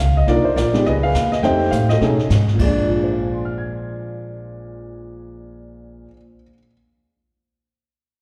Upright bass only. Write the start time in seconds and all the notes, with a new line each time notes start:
0.00 C#2
0.27 C2
0.56 A#1
0.85 C#2
1.14 D#2
1.43 F2
1.72 A2
2.01 B2
2.30 G#2
2.59 A#1